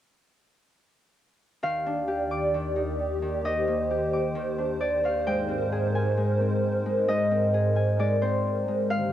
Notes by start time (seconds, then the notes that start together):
1.63 D#2 D#3 G4 D5 F5
1.86 D4
2.08 G4
2.31 D6
2.54 D#3
2.76 D#4
3.22 D#3
3.45 D#3 C5 D#5
3.67 A#3
3.91 G4
4.13 D6
4.35 D#3
4.58 D4
4.80 D5
5.04 D#3 F5
5.27 G#2 G#3 A#4 G5
5.48 C4
5.72 G#4
5.95 G#5
6.17 G#3
6.40 C4
6.86 G#3
7.08 G#3 D#5
7.31 C4
7.54 G#4
7.76 G#5
7.99 G#3 D5
8.22 C4 C5
8.68 G#3
8.90 D3 D#3 A#3 G4 F5